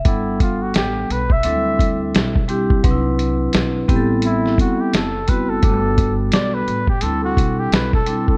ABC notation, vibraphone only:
X:1
M:4/4
L:1/8
Q:"Swing 16ths" 1/4=86
K:G
V:1 name="Vibraphone"
[G,B,DAf]3 z [F,G,CDEA]2 z [G,CDEG] | [F,CD^DEB]3 [G,B,CEGA]3 z [G,B,CEF] | [G,A,B,DFA]3 z [G,CDEA]2 z [G,CDEA] |]